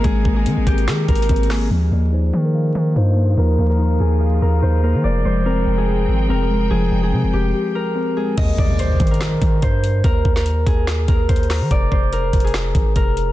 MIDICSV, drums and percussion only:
0, 0, Header, 1, 2, 480
1, 0, Start_track
1, 0, Key_signature, -3, "major"
1, 0, Tempo, 416667
1, 48, Time_signature, 4, 2, 24, 8
1, 15348, End_track
2, 0, Start_track
2, 0, Title_t, "Drums"
2, 49, Note_on_c, 9, 36, 113
2, 50, Note_on_c, 9, 42, 80
2, 164, Note_off_c, 9, 36, 0
2, 165, Note_off_c, 9, 42, 0
2, 290, Note_on_c, 9, 36, 94
2, 405, Note_off_c, 9, 36, 0
2, 530, Note_on_c, 9, 42, 80
2, 645, Note_off_c, 9, 42, 0
2, 769, Note_on_c, 9, 36, 99
2, 770, Note_on_c, 9, 42, 83
2, 884, Note_off_c, 9, 36, 0
2, 885, Note_off_c, 9, 42, 0
2, 897, Note_on_c, 9, 42, 47
2, 1010, Note_off_c, 9, 42, 0
2, 1010, Note_on_c, 9, 38, 122
2, 1010, Note_on_c, 9, 42, 84
2, 1018, Note_on_c, 9, 39, 97
2, 1125, Note_off_c, 9, 38, 0
2, 1125, Note_off_c, 9, 42, 0
2, 1133, Note_off_c, 9, 39, 0
2, 1249, Note_on_c, 9, 36, 107
2, 1251, Note_on_c, 9, 42, 52
2, 1330, Note_off_c, 9, 42, 0
2, 1330, Note_on_c, 9, 42, 69
2, 1365, Note_off_c, 9, 36, 0
2, 1409, Note_off_c, 9, 42, 0
2, 1409, Note_on_c, 9, 42, 83
2, 1489, Note_off_c, 9, 42, 0
2, 1489, Note_on_c, 9, 42, 77
2, 1490, Note_on_c, 9, 36, 104
2, 1568, Note_off_c, 9, 42, 0
2, 1568, Note_on_c, 9, 42, 60
2, 1605, Note_off_c, 9, 36, 0
2, 1649, Note_off_c, 9, 42, 0
2, 1649, Note_on_c, 9, 42, 45
2, 1728, Note_on_c, 9, 37, 98
2, 1728, Note_on_c, 9, 38, 98
2, 1733, Note_on_c, 9, 46, 86
2, 1736, Note_on_c, 9, 39, 75
2, 1765, Note_off_c, 9, 42, 0
2, 1843, Note_off_c, 9, 37, 0
2, 1843, Note_off_c, 9, 38, 0
2, 1848, Note_off_c, 9, 46, 0
2, 1851, Note_off_c, 9, 39, 0
2, 9648, Note_on_c, 9, 36, 104
2, 9648, Note_on_c, 9, 42, 74
2, 9648, Note_on_c, 9, 49, 94
2, 9763, Note_off_c, 9, 42, 0
2, 9763, Note_off_c, 9, 49, 0
2, 9764, Note_off_c, 9, 36, 0
2, 9889, Note_on_c, 9, 36, 89
2, 10004, Note_off_c, 9, 36, 0
2, 10128, Note_on_c, 9, 42, 78
2, 10243, Note_off_c, 9, 42, 0
2, 10367, Note_on_c, 9, 36, 95
2, 10367, Note_on_c, 9, 42, 79
2, 10447, Note_off_c, 9, 42, 0
2, 10447, Note_on_c, 9, 42, 63
2, 10482, Note_off_c, 9, 36, 0
2, 10528, Note_off_c, 9, 42, 0
2, 10528, Note_on_c, 9, 42, 47
2, 10606, Note_off_c, 9, 42, 0
2, 10606, Note_on_c, 9, 38, 121
2, 10606, Note_on_c, 9, 42, 84
2, 10614, Note_on_c, 9, 39, 94
2, 10721, Note_off_c, 9, 38, 0
2, 10721, Note_off_c, 9, 42, 0
2, 10729, Note_off_c, 9, 39, 0
2, 10847, Note_on_c, 9, 36, 106
2, 10847, Note_on_c, 9, 42, 80
2, 10962, Note_off_c, 9, 42, 0
2, 10963, Note_off_c, 9, 36, 0
2, 11086, Note_on_c, 9, 42, 72
2, 11088, Note_on_c, 9, 36, 101
2, 11201, Note_off_c, 9, 42, 0
2, 11204, Note_off_c, 9, 36, 0
2, 11331, Note_on_c, 9, 42, 84
2, 11446, Note_off_c, 9, 42, 0
2, 11567, Note_on_c, 9, 36, 102
2, 11567, Note_on_c, 9, 42, 74
2, 11682, Note_off_c, 9, 42, 0
2, 11683, Note_off_c, 9, 36, 0
2, 11808, Note_on_c, 9, 36, 91
2, 11923, Note_off_c, 9, 36, 0
2, 11934, Note_on_c, 9, 38, 66
2, 12048, Note_on_c, 9, 42, 77
2, 12049, Note_off_c, 9, 38, 0
2, 12163, Note_off_c, 9, 42, 0
2, 12287, Note_on_c, 9, 36, 101
2, 12290, Note_on_c, 9, 42, 76
2, 12402, Note_off_c, 9, 36, 0
2, 12405, Note_off_c, 9, 42, 0
2, 12526, Note_on_c, 9, 42, 83
2, 12527, Note_on_c, 9, 38, 119
2, 12535, Note_on_c, 9, 39, 91
2, 12642, Note_off_c, 9, 38, 0
2, 12642, Note_off_c, 9, 42, 0
2, 12650, Note_off_c, 9, 39, 0
2, 12767, Note_on_c, 9, 36, 104
2, 12767, Note_on_c, 9, 42, 80
2, 12882, Note_off_c, 9, 42, 0
2, 12883, Note_off_c, 9, 36, 0
2, 13007, Note_on_c, 9, 42, 74
2, 13008, Note_on_c, 9, 36, 102
2, 13087, Note_off_c, 9, 42, 0
2, 13087, Note_on_c, 9, 42, 60
2, 13123, Note_off_c, 9, 36, 0
2, 13168, Note_off_c, 9, 42, 0
2, 13168, Note_on_c, 9, 42, 44
2, 13247, Note_on_c, 9, 38, 91
2, 13252, Note_on_c, 9, 46, 86
2, 13255, Note_on_c, 9, 39, 74
2, 13283, Note_off_c, 9, 42, 0
2, 13362, Note_off_c, 9, 38, 0
2, 13367, Note_off_c, 9, 46, 0
2, 13370, Note_off_c, 9, 39, 0
2, 13488, Note_on_c, 9, 36, 105
2, 13488, Note_on_c, 9, 42, 76
2, 13603, Note_off_c, 9, 36, 0
2, 13604, Note_off_c, 9, 42, 0
2, 13728, Note_on_c, 9, 36, 88
2, 13843, Note_off_c, 9, 36, 0
2, 13969, Note_on_c, 9, 42, 76
2, 14084, Note_off_c, 9, 42, 0
2, 14207, Note_on_c, 9, 36, 95
2, 14208, Note_on_c, 9, 42, 79
2, 14287, Note_off_c, 9, 42, 0
2, 14287, Note_on_c, 9, 42, 62
2, 14322, Note_off_c, 9, 36, 0
2, 14368, Note_off_c, 9, 42, 0
2, 14368, Note_on_c, 9, 42, 47
2, 14446, Note_off_c, 9, 42, 0
2, 14446, Note_on_c, 9, 38, 113
2, 14446, Note_on_c, 9, 42, 81
2, 14454, Note_on_c, 9, 39, 94
2, 14561, Note_off_c, 9, 38, 0
2, 14561, Note_off_c, 9, 42, 0
2, 14569, Note_off_c, 9, 39, 0
2, 14687, Note_on_c, 9, 36, 104
2, 14687, Note_on_c, 9, 42, 79
2, 14802, Note_off_c, 9, 36, 0
2, 14802, Note_off_c, 9, 42, 0
2, 14927, Note_on_c, 9, 42, 75
2, 14928, Note_on_c, 9, 36, 100
2, 15042, Note_off_c, 9, 42, 0
2, 15043, Note_off_c, 9, 36, 0
2, 15172, Note_on_c, 9, 42, 86
2, 15287, Note_off_c, 9, 42, 0
2, 15348, End_track
0, 0, End_of_file